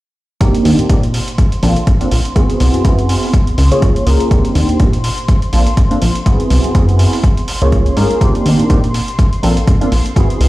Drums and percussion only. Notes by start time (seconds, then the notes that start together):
0.41 kick, closed hi-hat
0.55 closed hi-hat
0.65 open hi-hat
0.79 closed hi-hat
0.90 kick, closed hi-hat
1.03 closed hi-hat
1.14 open hi-hat
1.28 closed hi-hat
1.38 kick, closed hi-hat
1.52 closed hi-hat
1.63 open hi-hat
1.76 closed hi-hat
1.87 kick, closed hi-hat
2.01 closed hi-hat
2.11 open hi-hat
2.25 closed hi-hat
2.36 kick, closed hi-hat
2.50 closed hi-hat
2.60 open hi-hat
2.74 closed hi-hat
2.85 kick, closed hi-hat
2.99 closed hi-hat
3.09 open hi-hat
3.23 open hi-hat
3.33 kick, closed hi-hat
3.47 closed hi-hat
3.58 open hi-hat
3.72 closed hi-hat
3.82 kick, closed hi-hat
3.96 closed hi-hat
4.07 open hi-hat
4.20 closed hi-hat
4.31 kick, closed hi-hat
4.45 closed hi-hat
4.55 open hi-hat
4.69 closed hi-hat
4.80 kick, closed hi-hat
4.93 closed hi-hat
5.04 open hi-hat
5.18 closed hi-hat
5.28 kick, closed hi-hat
5.42 closed hi-hat
5.53 open hi-hat
5.67 closed hi-hat
5.77 kick, closed hi-hat
5.91 closed hi-hat
6.02 open hi-hat
6.15 closed hi-hat
6.26 kick, closed hi-hat
6.40 closed hi-hat
6.50 open hi-hat
6.64 closed hi-hat
6.75 kick, closed hi-hat
6.89 closed hi-hat
6.99 open hi-hat
7.13 open hi-hat
7.24 kick, closed hi-hat
7.37 closed hi-hat
7.48 open hi-hat
7.62 closed hi-hat
7.72 kick, closed hi-hat
7.86 closed hi-hat
7.97 open hi-hat
8.11 closed hi-hat
8.21 kick, closed hi-hat
8.35 closed hi-hat
8.46 open hi-hat
8.59 closed hi-hat
8.70 kick, closed hi-hat
8.84 closed hi-hat
8.94 open hi-hat
9.08 closed hi-hat
9.19 kick, closed hi-hat
9.33 closed hi-hat
9.43 open hi-hat
9.57 closed hi-hat
9.67 kick, closed hi-hat
9.81 closed hi-hat
9.92 open hi-hat
10.06 closed hi-hat
10.16 kick, closed hi-hat
10.30 closed hi-hat
10.41 open hi-hat